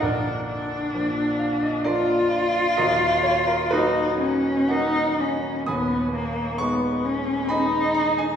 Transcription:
<<
  \new Staff \with { instrumentName = "Grand piano" } { \time 3/4 \key ees \minor \tempo 4 = 65 <bes' d'' ges''>4. f''16 ees''16 <f' bes' d''>4 | <ges' bes' ees''>8 des''16 bes'16 <ees' ges' ces''>4 <bes' ees'' ges''>4 | <aes'' ces''' ees'''>4 des'''4 <ees'' aes'' ces'''>8 bes''16 aes''16 | }
  \new Staff \with { instrumentName = "Grand piano" } { \clef bass \time 3/4 \key ees \minor <bes,,, bes,,>4 <f bes d'>4 <f bes d'>4 | <ees,, ees,>4 <ges bes>4 <ges bes ees'>4 | <ees,, ees,>4 <aes ces' ees'>4 <aes ces' ees'>4 | }
  \new Staff \with { instrumentName = "Cello" } { \time 3/4 \key ees \minor d'8 d'4. f'4~ | f'4 ees'8 des'8 ees'8 des'8 | ces'8 bes8 ces'8 des'8 ees'4 | }
>>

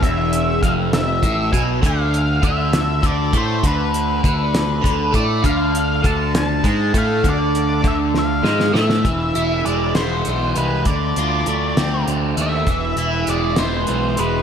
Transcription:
<<
  \new Staff \with { instrumentName = "Lead electric guitar" } { \time 6/8 \tempo 4. = 66 e''4 f''8 e''4 gis''8 | f''4 e''4 d''8 c''8 | b'2~ b'8 d''8 | f''4 a''8 a''4 f''8 |
d''4 e''8 f''4 e''8~ | e''4 d''8 c''4 b'8 | d''2 r8 e''8~ | e''4 d''8 c''4 b'8 | }
  \new Staff \with { instrumentName = "Overdriven electric guitar" } { \clef bass \time 6/8 e,4 f,4 a,8 b,8 | d4 d4 d8 a8 | d4 d4 d8 a8 | d4 d4 gis8 a8 |
d4 d4 gis8 a8 | e8 e'8 gis8 b8 e8 gis8 | d8 f'8 a8 c'8 d8 a8 | e8 e'8 gis8 b8 e8 gis8 | }
  \new Staff \with { instrumentName = "Picked electric bass" } { \clef bass \time 6/8 e,,4 f,,4 a,,8 b,,8 | d,4 d,4 d,8 a,8 | d,4 d,4 d,8 a,8 | d,4 d,4 gis,8 a,8 |
d,4 d,4 gis,8 a,8 | e,,8 e,,8 e,,8 e,,8 b,,8 c,8 | d,8 d,8 d,8 d,8 d,8 dis,8 | e,,8 e,,8 e,,8 e,,8 b,,8 e,,8 | }
  \new DrumStaff \with { instrumentName = "Drums" } \drummode { \time 6/8 <hh bd>8 hh8 <hh bd>8 <hh sn>8 <hh bd>8 <hh bd>8 | <hh bd>8 hh8 <hh bd>8 <hh sn>8 <hh bd>8 <hh bd>8 | <hh bd>8 hh8 <hh bd>8 <hh sn>8 <hh bd>8 <hh bd>8 | <hh bd>8 hh8 <hh bd>8 <hh sn>8 <hh bd>8 <hh bd>8 |
<hh bd>8 hh8 <hh bd>8 sn8 sn16 sn16 sn16 sn16 | <hh bd>8 hh8 hh8 <hh sn>8 hh8 hh8 | <hh bd>8 hh8 hh8 <hh sn>8 hh8 hh8 | <hh bd>8 hh8 hh8 <hh sn>8 hh8 hh8 | }
>>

